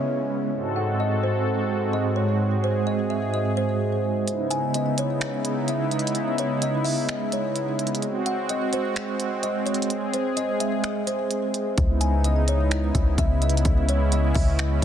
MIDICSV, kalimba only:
0, 0, Header, 1, 2, 480
1, 0, Start_track
1, 0, Key_signature, 4, "minor"
1, 0, Tempo, 468750
1, 539, Time_signature, 4, 2, 24, 8
1, 15202, End_track
2, 0, Start_track
2, 0, Title_t, "Kalimba"
2, 0, Program_c, 0, 108
2, 777, Note_on_c, 0, 78, 66
2, 1006, Note_off_c, 0, 78, 0
2, 1023, Note_on_c, 0, 75, 84
2, 1249, Note_off_c, 0, 75, 0
2, 1264, Note_on_c, 0, 72, 80
2, 1489, Note_off_c, 0, 72, 0
2, 1979, Note_on_c, 0, 75, 78
2, 2207, Note_off_c, 0, 75, 0
2, 2211, Note_on_c, 0, 73, 68
2, 2443, Note_off_c, 0, 73, 0
2, 2702, Note_on_c, 0, 72, 72
2, 2928, Note_off_c, 0, 72, 0
2, 2937, Note_on_c, 0, 75, 90
2, 3166, Note_off_c, 0, 75, 0
2, 3175, Note_on_c, 0, 76, 74
2, 3405, Note_off_c, 0, 76, 0
2, 3417, Note_on_c, 0, 75, 86
2, 3646, Note_off_c, 0, 75, 0
2, 3656, Note_on_c, 0, 72, 80
2, 4337, Note_off_c, 0, 72, 0
2, 4613, Note_on_c, 0, 80, 85
2, 4844, Note_off_c, 0, 80, 0
2, 4864, Note_on_c, 0, 75, 79
2, 5089, Note_off_c, 0, 75, 0
2, 5109, Note_on_c, 0, 73, 91
2, 5332, Note_off_c, 0, 73, 0
2, 5828, Note_on_c, 0, 76, 77
2, 6052, Note_off_c, 0, 76, 0
2, 6065, Note_on_c, 0, 75, 82
2, 6290, Note_off_c, 0, 75, 0
2, 6546, Note_on_c, 0, 73, 79
2, 6771, Note_off_c, 0, 73, 0
2, 6787, Note_on_c, 0, 75, 89
2, 7009, Note_on_c, 0, 76, 82
2, 7011, Note_off_c, 0, 75, 0
2, 7242, Note_off_c, 0, 76, 0
2, 7507, Note_on_c, 0, 73, 82
2, 7731, Note_off_c, 0, 73, 0
2, 8460, Note_on_c, 0, 78, 71
2, 8687, Note_off_c, 0, 78, 0
2, 8702, Note_on_c, 0, 75, 81
2, 8929, Note_off_c, 0, 75, 0
2, 8942, Note_on_c, 0, 72, 84
2, 9169, Note_off_c, 0, 72, 0
2, 9660, Note_on_c, 0, 75, 80
2, 9888, Note_off_c, 0, 75, 0
2, 9888, Note_on_c, 0, 73, 70
2, 10121, Note_off_c, 0, 73, 0
2, 10381, Note_on_c, 0, 72, 75
2, 10608, Note_off_c, 0, 72, 0
2, 10616, Note_on_c, 0, 75, 94
2, 10845, Note_off_c, 0, 75, 0
2, 10856, Note_on_c, 0, 76, 76
2, 11085, Note_off_c, 0, 76, 0
2, 11096, Note_on_c, 0, 75, 92
2, 11325, Note_off_c, 0, 75, 0
2, 11336, Note_on_c, 0, 72, 80
2, 12017, Note_off_c, 0, 72, 0
2, 12295, Note_on_c, 0, 80, 81
2, 12525, Note_off_c, 0, 80, 0
2, 12546, Note_on_c, 0, 75, 82
2, 12771, Note_off_c, 0, 75, 0
2, 12787, Note_on_c, 0, 73, 86
2, 13011, Note_off_c, 0, 73, 0
2, 13507, Note_on_c, 0, 76, 81
2, 13731, Note_off_c, 0, 76, 0
2, 13745, Note_on_c, 0, 75, 86
2, 13970, Note_off_c, 0, 75, 0
2, 14226, Note_on_c, 0, 73, 79
2, 14451, Note_off_c, 0, 73, 0
2, 14469, Note_on_c, 0, 75, 92
2, 14690, Note_on_c, 0, 76, 86
2, 14692, Note_off_c, 0, 75, 0
2, 14922, Note_off_c, 0, 76, 0
2, 14949, Note_on_c, 0, 75, 86
2, 15172, Note_off_c, 0, 75, 0
2, 15202, End_track
0, 0, End_of_file